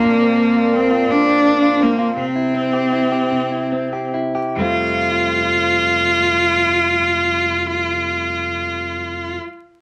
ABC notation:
X:1
M:6/8
L:1/16
Q:3/8=46
K:F
V:1 name="Flute section"
[CFBda]12 | z12 | z12 | z12 |]
V:2 name="Cello"
B,4 C2 D4 B,2 | C8- C2 z2 | F12- | F12 |]
V:3 name="Clean electric guitar"
B,, C B, F C F B,, C B, F C F | C, E C G E G C, E C G E G | [F,,C,G,A,CF]12- | [F,,C,G,A,CF]12 |]